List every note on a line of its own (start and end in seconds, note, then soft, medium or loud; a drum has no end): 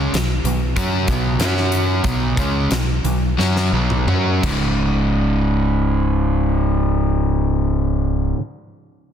0.00 0.11 C#2 medium
0.00 0.12 C#3 medium
0.00 0.12 G#3 medium
0.00 0.13 C#4 medium
0.13 0.42 B1 medium
0.13 0.38 B2 medium
0.13 0.38 F#3 medium
0.13 snare loud
0.13 closed hi-hat medium
0.44 0.73 B1 medium
0.44 0.70 B2 medium
0.44 0.70 F#3 medium
0.44 closed hi-hat medium
0.76 1.06 F#2 medium
0.76 1.07 F#3 medium
0.76 1.07 C#4 medium
0.76 1.08 F#4 medium
0.76 kick medium
0.76 closed hi-hat medium
1.08 1.38 B1 loud
1.08 1.39 B2 medium
1.08 1.39 F#3 medium
1.08 1.40 B3 medium
1.08 kick medium
1.08 closed hi-hat medium
1.38 2.00 F#2 medium
1.38 2.03 F#3 medium
1.38 2.04 C#4 medium
1.38 2.04 F#4 loud
1.38 snare medium
1.38 closed hi-hat medium
1.57 snare soft
1.72 closed hi-hat medium
2.04 2.35 B1 medium
2.04 2.36 B2 medium
2.04 2.36 F#3 medium
2.04 2.37 B3 loud
2.04 kick medium
2.04 closed hi-hat medium
2.37 2.68 C#2 medium
2.37 2.69 C#3 medium
2.37 2.70 G#3 medium
2.37 2.70 C#4 medium
2.37 kick medium
2.37 closed hi-hat medium
2.71 3.02 B1 medium
2.71 2.98 B2 medium
2.71 2.98 F#3 medium
2.71 snare loud
2.71 closed hi-hat medium
3.04 3.35 B1 medium
3.04 3.32 B2 medium
3.04 3.32 F#3 medium
3.04 closed hi-hat medium
3.38 3.70 F#2 medium
3.38 3.71 F#3 medium
3.38 3.72 C#4 medium
3.38 3.72 F#4 loud
3.38 snare soft
3.57 snare medium
3.72 4.05 B1 medium
3.72 4.06 B2 medium
3.72 4.06 F#3 medium
3.72 4.07 B3 medium
3.90 high tom medium
4.07 4.40 F#2 medium
4.07 4.43 F#3 medium
4.07 4.43 C#4 medium
4.07 4.44 F#4 medium
4.07 mid tom medium
4.42 8.32 C#1 medium
4.42 8.36 C#2 medium
4.42 8.38 G#2 medium
4.42 8.39 C#3 medium
4.42 kick medium
4.42 crash medium